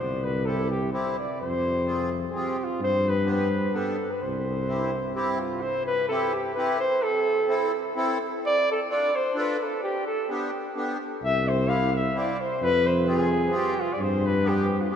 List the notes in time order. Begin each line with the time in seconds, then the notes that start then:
0.00 C2 C5
0.24 B4
0.46 C4 E4 G4 A4
0.70 G4
0.92 C4 E4 G4 C5
1.19 D5
1.41 F2 C5
1.86 C4 F4 G#4
2.30 C4 G#4
2.35 F4 G#4
2.40 G4
2.64 F4
2.80 G2 C5
3.09 B4
3.25 B3 D4 G4
3.30 B4
3.73 B3 D4 G4 A4
4.11 B4
4.22 C2 C5
4.67 C4 E4 G4
5.15 C4 E4 G4
5.39 F4
5.61 C5
5.86 B4
6.09 C4 E4 G4 A4
6.34 G4
6.55 C4 E4 G4 B4
6.79 C5
7.03 A4
7.47 C4 E4 A4
7.96 C4 E4 A4
8.46 D5
8.72 A4
8.89 D4 F4 A4 D5
9.15 C5
9.34 D4 F4 A4
9.39 B4
9.63 A4
9.83 G4
10.06 A4
10.29 B3 D4 G4
10.75 B3 D4 G4
11.23 C2 E5
11.48 C5
11.67 C4 E4 G4 F5
11.96 E5
12.15 C4 E4 G4 D5
12.41 C5
12.61 F2 B4
12.87 C5
13.05 C4 F4 G#4
13.50 C4 F4 G#4
13.56 G4
13.80 F4
13.93 D5
13.99 G2 C5
14.26 B4
14.43 B3 D4 G4
14.48 G4
14.81 F4
14.90 B3 D4 G4